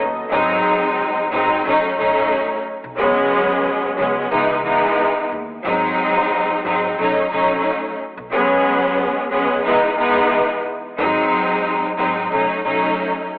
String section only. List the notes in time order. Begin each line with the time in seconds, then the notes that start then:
0.31 F#3 G#3 C4 D#4
1.31 F#3 G#3 C4 D#4
1.64 F#3 A3 C#4 D#4
1.97 F#3 A3 C#4 D#4
2.98 F#3 G#3 B3 C#4
3.97 F#3 G#3 B3 C#4
4.31 E3 G#3 B3 D#4
4.63 E3 G#3 B3 D#4
5.64 F#3 G#3 C4 D#4
6.64 F#3 G#3 C4 D#4
6.98 F#3 A3 C#4 D#4
7.30 F#3 A3 C#4 D#4
8.31 F#3 G#3 B3 C#4
9.31 F#3 G#3 B3 C#4
9.64 E3 G#3 B3 D#4
9.97 E3 G#3 B3 D#4
10.97 F#3 G#3 C4 D#4
11.97 F#3 G#3 C4 D#4
12.31 F#3 A3 C#4 D#4
12.64 F#3 A3 C#4 D#4